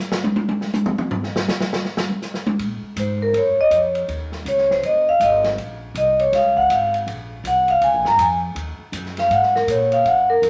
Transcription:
0.00 hi-hat pedal
0.12 snare
0.24 high tom
0.36 high tom
0.49 high tom
0.61 snare
0.74 hi-hat pedal, high tom
0.86 mid tom
0.98 mid tom
1.11 floor tom
1.23 snare
1.36 snare
1.48 snare, hi-hat pedal
1.61 snare
1.73 snare
1.85 snare
1.97 snare
2.10 high tom
2.22 snare, hi-hat pedal
2.34 snare
2.46 high tom
2.59 A#2, ride
2.82 muted upright bass stroke
2.96 G#2 C5, hi-hat pedal, ride
3.22 A#4
3.33 F#2, ride
3.38 C#5
3.57 D#5, muted upright bass stroke
3.71 F2, hi-hat pedal, ride
3.75 C#5
3.95 ride
4.08 D#2, ride
4.32 snare
4.45 C#2 C#5, hi-hat pedal, ride
4.58 snare
4.71 C5, snare
4.83 F#1 D#5, ride
5.09 F5
5.20 G#1 D#5, hi-hat pedal, ride
5.44 snare, ride
5.57 A#1, ride
5.94 C2 D#5, hi-hat pedal, ride
6.19 C#5, ride
6.32 C#2 F5, snare, ride
6.56 F#5, kick
6.69 G#1 F5, hi-hat pedal, ride
6.94 ride
7.06 A#1, ride
7.44 C2 F#5, hi-hat pedal, ride
7.68 F5, ride
7.81 C#2 G#5, ride
7.93 A#1
8.05 G#1 A#5, snare
8.18 F2 G#5, hi-hat pedal, ride
8.55 D#2, ride
8.79 muted upright bass stroke
8.92 F#2, hi-hat pedal, ride
9.06 snare
9.17 F5, snare, ride
9.30 G#2 F#5, ride
9.43 snare
9.56 A#4, snare
9.67 A#2 C#5, hi-hat pedal, ride
9.92 F5, ride
10.04 F#2 F#5, ride
10.30 A#4
10.42 F2, hi-hat pedal, ride

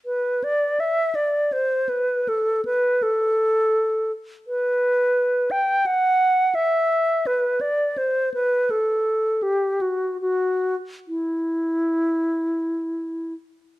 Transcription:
0.06 B4
0.44 D5
0.80 E5
1.15 D5
1.52 C5
1.89 B4
2.28 A4
2.65 B4
3.03 A4
4.47 B4
5.51 G5
5.86 F#5
6.55 E5
7.27 B4
7.61 D5
7.98 C5
8.34 B4
8.70 A4
9.43 G4
9.81 F#4
10.21 F#4
11.08 E4

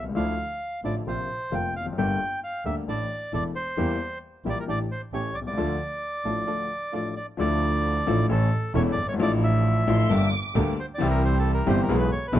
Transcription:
Already playing: C2
0.04 C2
0.09 C#2
0.15 D2 D3 F3 A3 D4 E4 F5
0.83 A1 A2 D3 F3 A3 D4 E4 D5
1.07 A#1 A#2 C3 F3 A#3 C4 F4 C5
1.51 F1 F2 C3 F3 A#3 C4 F4 G5
1.74 F1 F5
1.80 E2
1.86 F2
1.93 F#2
1.97 G1 G2 G3 A#3 D4 G4 A4 G5
2.44 F5
2.65 D2 D3 G3 A#3 D4 G4 A4 E5
2.88 A1 A2 E3 A3 D4 E4 A4 D5
3.33 E1 E2 E3 A3 D4 E4 A4 D5
3.55 C5
3.77 E2 E3 G3 A#3 E4 G4
4.44 A#1 A#2 E3 G3 A#3 E4 G4
4.49 D5
4.60 A#4
4.67 A1 A2 E3 A3 D4 G4 D5
4.92 C5
5.12 A1 A2 E3 A3 C#4 G4 C#5
5.34 C2 D5
5.41 B1
5.47 C2 D5
5.53 C#2 A3 D4 F4
5.57 D2 D3 F3 A3 D4 A4
6.25 A1 A2 F3 A3 D4 F4 A4
6.46 D2 D3 F3 A3 D4 F4 A4
6.92 A1 A2 F3 A3 D4 F4 A4 D5
7.16 D5
7.37 D2 D3 F3 D4 E4 A4 D5
8.06 A1 A2 F3 D4 E4 A4
8.29 A1 A2 E3 A3 C#4 E4 A4
8.74 E1 E2 E3 A3 C#4 E4 A4 C#5
8.92 D5
8.98 G1
9.03 F#1
9.08 G1 C#5
9.14 G#1
9.18 A1 A2 F3 D4 E4 A4
9.22 D5
9.44 E5
9.87 A1 A2 F3 D4 E4 A4 C6
10.09 G1 G2 G3 A#3 D4 G4 A4 D6
10.54 D2 D3 G3 A#3 D4 G4 A4
10.80 C5
10.95 E3 C4 E4 G4 D5
10.99 C2 C3 G3 C4 G4
11.10 A#4
11.25 C5
11.39 A4
11.54 A#4
11.66 G1 G2 E3 G3 C4 E4 G4 C5
11.83 A#4
11.88 B1 B2 E3 G#3 B3 E4 G#4
11.98 B4
12.12 C#5
12.28 B4
12.33 B1 B2 E3 G#3 B3 E4 G#4

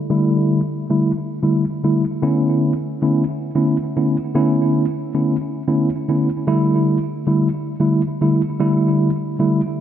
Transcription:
0.10 D3 G3 A3 E4
0.90 D3 G3 A3 E4
1.43 D3 G3 A3 E4
1.84 D3 G3 A3 E4
2.22 D3 A3 B3 C#4 E4
3.02 D3 A3 B3 C#4 E4
3.55 D3 A3 B3 C#4 E4
3.96 D3 A3 B3 C#4 E4
4.35 D3 A3 B3 C#4 E4
5.14 D3 A3 B3 C#4 E4
5.68 D3 A3 B3 C#4 E4
6.09 D3 A3 B3 C#4 E4
6.47 D3 G3 A3 E4
7.27 D3 G3 A3 E4
7.80 D3 G3 A3 E4
8.21 D3 G3 A3 E4
8.60 D3 G3 A3 E4
9.39 D3 G3 A3 E4

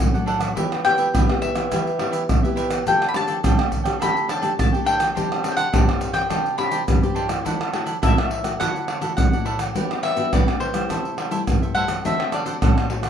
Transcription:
Already playing: F#5
0.00 A2, pandeiro, tamborim, shaker, surdo
0.14 F#3 A3 D4 A4 D5 F#5, pandeiro, shaker
0.26 D4 A4 D5 F#5, pandeiro
0.39 A4 D5 F#5, pandeiro, tamborim, shaker
0.55 E3 B3 E4 G4 B4 E5, pandeiro, shaker, surdo
0.72 pandeiro, tamborim, shaker
0.83 B3 E4 G4 B4 E5 G5, pandeiro, tamborim, shaker
0.97 E4 G4 B4 E5, pandeiro, shaker
1.14 B2 E4 G4 B4 E5, pandeiro, tamborim, shaker, surdo
1.29 B3 E4 G4 B4 E5, pandeiro, tamborim, shaker
1.42 E5, pandeiro
1.55 B3 E4 G4 B4 E5, pandeiro, tamborim, shaker
1.71 E3 B3 E4 G4 B4 E5, pandeiro, tamborim, shaker, surdo
1.87 pandeiro, shaker
1.99 B3 E4 G4 B4 E5, pandeiro, tamborim
2.12 E4 G4 B4 E5, pandeiro, shaker
2.29 B2, pandeiro, tamborim, shaker, surdo
2.43 B3 E4 G4 B4 E5, pandeiro, shaker
2.56 E4 G4 B4 E5, pandeiro, shaker
2.70 G4 B4 E5, pandeiro, tamborim, shaker
2.86 D3 A3 D4 G4 A4 D5 G5, pandeiro, shaker, surdo
3.02 pandeiro, tamborim, shaker
3.09 B5
3.14 A3 D4 G4 A4 D5 G5 A5, pandeiro, tamborim
3.27 D4 A4 D5 G5, pandeiro, shaker
3.43 D3 A3 D4 G4 A4 D5 G5, pandeiro, tamborim, shaker, surdo
3.58 A4 D5 G5, pandeiro, tamborim, shaker
3.72 pandeiro, shaker, surdo
3.84 A3 D4 G4 A4 D5 G5, pandeiro, tamborim, shaker
3.99 D3 A3 D4 G4 A4 D5 G5 B5, pandeiro, tamborim, shaker, surdo
4.17 pandeiro, shaker
4.28 D4 A4 D5 G5 A5, pandeiro, tamborim
4.41 A3 D4 G4 A4 D5 G5, pandeiro, shaker
4.59 D3 A5, pandeiro, tamborim, shaker, surdo
4.72 A3 D4 G4 A4 D5 G5, pandeiro, shaker
4.85 D4 A4 D5 G5, pandeiro
4.98 D5 G5, pandeiro, tamborim, shaker
5.15 C3 C4 D4 G4 C5 D5, pandeiro, shaker, surdo
5.32 pandeiro, tamborim, shaker
5.42 C4 D4 G4 C5 D5, pandeiro, tamborim, shaker
5.52 G5
5.56 D4 G4 C5 D5 F#5, pandeiro, shaker
5.72 G2 C4 D4 G4 C5 D5, pandeiro, tamborim, shaker, surdo
5.88 G4 C5 D5, pandeiro, tamborim, shaker
6.01 pandeiro, shaker
6.13 G4 C5 D5 G5, pandeiro, tamborim, shaker
6.29 C3 C4 D4 G4 C5 D5, pandeiro, tamborim, shaker, surdo
6.46 pandeiro, shaker
6.57 C4 D4 G4 C5 D5 B5, pandeiro, tamborim
6.71 D4 G4 C5 D5, pandeiro, shaker
6.88 G2 C4 D4 G4, pandeiro, tamborim, shaker, surdo
7.02 C4 D4 G4 C5 D5, pandeiro, shaker
7.14 D4 G4 C5 D5, pandeiro
7.28 A3 E4 F#4 G4 C5 D5, pandeiro, tamborim, shaker
7.45 D3 E4 A4 D5 F#5, pandeiro, shaker, surdo
7.61 pandeiro, tamborim, shaker
7.73 A3 E4 F#4 A4 D5 F#5, pandeiro, tamborim
7.85 E4 A4 D5 F#5, pandeiro, shaker
8.02 A2 A3 E4 F#4 A4 D5 E5 F#5, pandeiro, tamborim, shaker, surdo
8.17 A4 D5 F#5, pandeiro, tamborim, shaker
8.31 pandeiro
8.44 A3 E4 F#4 A4 D5 F#5, pandeiro, tamborim, shaker
8.60 D3 A3 E4 F#4 A4 D5 F#5, pandeiro, tamborim, shaker, surdo
8.76 pandeiro, shaker
8.87 E4 A4 D5 F#5, pandeiro, tamborim
9.01 A3 E4 F#4 A4 D5 F#5, pandeiro, shaker
9.17 A2 F#5, pandeiro, tamborim, shaker, surdo
9.32 A3 E4 F#4 A4 D5 F#5, pandeiro, shaker
9.45 E4 A4 D5 F#5, pandeiro
9.59 A4 D5 F#5, pandeiro, tamborim, shaker
9.75 G3 B3 D4 F#4 G4 B4 D5, pandeiro, shaker, surdo
9.91 pandeiro, tamborim, shaker
10.02 F#4 G4 B4 D5 E5, pandeiro, tamborim
10.16 B3 D4 F#4 G4 B4 D5, pandeiro, shaker
10.32 D3 F#4 G4 B4 D5, pandeiro, tamborim, shaker, surdo
10.47 B3 D4 F#4 G4 B4 D5, pandeiro, tamborim, shaker
10.60 C5, pandeiro
10.73 G3 A3 E4 G4 B4 D5, pandeiro, tamborim, shaker
10.89 C3 E4 A4 C5 E5, pandeiro, tamborim, shaker, surdo
11.05 pandeiro, shaker
11.17 E4 A4 C5 E5, pandeiro, tamborim
11.31 G3 A3 E4 A4 C5 E5, pandeiro, shaker
11.47 G2, pandeiro, tamborim, shaker, surdo
11.62 A4 C5 E5, pandeiro, shaker
11.75 G3 A3 E4 A4 C5 E5 F#5, pandeiro
11.88 A4 C5 E5, pandeiro, tamborim, shaker
12.05 D3 A3 C4 D4 F#4 A4 C5 E5 F#5, pandeiro, shaker, surdo
12.20 pandeiro, tamborim, shaker
12.32 D4 A4 C5 D5 F#5, pandeiro, tamborim, shaker
12.45 A3 C4 D4 F#4 A4 C5 F#5, pandeiro, shaker
12.61 A2 D4 A4 C5 F#5, pandeiro, tamborim, shaker, surdo
12.76 C5 F#5, pandeiro, tamborim, shaker
12.90 A3 C4 F#4, pandeiro
13.02 A4 C5 F#5, pandeiro, tamborim, shaker

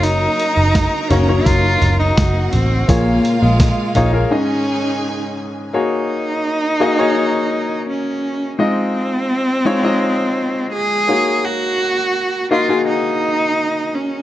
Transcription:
Already playing: F#1 C#3 F#3 A#3 D#4 A#4 C#5 A#5
0.03 D#4, open hi-hat
0.40 open hi-hat
0.57 F#1
0.75 kick, snare, open hi-hat
1.10 F#1 A#3 C#4 D#4 F#4 C#5, floor tom, open hi-hat
1.28 F#3 A#3 D#4 C#5
1.45 F#1 F4, kick, open hi-hat
1.82 F#1, floor tom, open hi-hat
1.99 D#4
2.17 F#1 F#4 F#5, kick, snare, open hi-hat
2.53 A1 C4, floor tom, open hi-hat
2.88 A#1 A#2 G#3 A#3 F4 G#4 C#5 F5, kick, open hi-hat
3.25 open hi-hat
3.42 A#1 G#3
3.60 kick, snare, open hi-hat
3.95 A#1 A#3 D#4 F4 G#4 C#5, floor tom, open hi-hat
4.13 A#3 F4 G#4 A#4
4.31 G#2 D#3 C#4 D#4 G#4 D#5 G#5
5.74 A#3 D#4 F#4 G#4 C#5
6.80 A#3 F#4 G#4 D#5
6.98 A#3 F#4 G#4 C#5
7.89 C#4
8.59 G#3 C4 D#4 F4 D#5
9.65 G#3 D#4 F4 C#5
9.83 G#3 D#4 F4 D#5
10.73 G#4
11.08 A#3 D#4 F#4 C#5
11.44 F#4
12.51 A#3 D#4 F4 F#4 D#5
12.68 A#3 D#4 F#4 G#4
12.87 D#4
13.94 C#4

